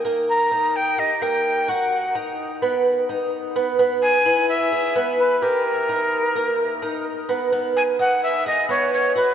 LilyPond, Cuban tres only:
\new Staff \with { instrumentName = "Cuban tres" } { \time 4/4 \key gis \minor \tempo 4 = 128 ais4 dis'4 g'8 ais4 fis'8~ | fis'8 dis'4 b4 dis'4 b8 | b4 e'4 gis'8 b4 g'8~ | g'8 dis'4 ais4 dis'4 b8 |
b4 dis'4 gis'8 b4 fis'8 | }